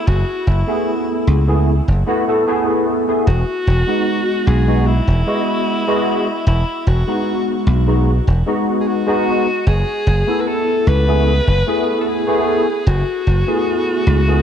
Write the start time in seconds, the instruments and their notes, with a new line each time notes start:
0.07 slap bass F#1, alto saxophone F#4
0.47 slap bass F#1, alto saxophone E4
0.67 tine electric piano A3 B3 E4 G#4
1.27 slap bass C#2
1.47 tine electric piano A3 B3 E4 G#4
1.88 slap bass F#1
2.06 tine electric piano A3 B3 E4 F#4
2.27 tine electric piano A3 B3 E4 A4
2.47 tine electric piano A3 B3 E4 G#4
3.07 tine electric piano A3 B3 E4 G#4
3.27 slap bass E1, alto saxophone F#4
3.67 slap bass E1
3.87 tine electric piano G#3 B3 D#4 F#4
4.47 slap bass B1, alto saxophone G#4
4.67 tine electric piano G#3 B3 D#4 F#4
4.87 alto saxophone E4
5.07 slap bass E1
5.27 tine electric piano G#3 B3 F#4 D#5
5.87 tine electric piano G#3 B3 F#4 D#5
6.47 slap bass E1, alto saxophone E4
6.87 slap bass E1, alto saxophone F#4
7.07 tine electric piano G#3 B3 D#4 F#4
7.67 slap bass B1
7.87 tine electric piano G#3 B3 D#4 F#4
8.27 slap bass E1
8.46 tine electric piano G#3 B3 D#4 F#4
8.80 alto saxophone G#4
8.88 alto saxophone F#4
9.07 tine electric piano G#3 B3 D#4 F#4
9.67 slap bass F#1, alto saxophone G#4
10.07 slap bass F#1
10.27 tine electric piano A3 B3 E4 A4
10.41 alto saxophone B4
10.48 alto saxophone A4
10.87 slap bass C#2, alto saxophone B4
11.07 tine electric piano A3 B3 E4 G#4
11.47 slap bass F#1
11.66 tine electric piano A3 B3 E4 G#4
12.01 alto saxophone A4
12.08 alto saxophone G#4
12.27 tine electric piano A3 B3 E4 G#4
12.87 slap bass F#1, alto saxophone F#4
13.27 slap bass F#1
13.47 tine electric piano A3 B3 E4 G#4
14.07 slap bass C#2
14.27 tine electric piano A3 B3 E4 G#4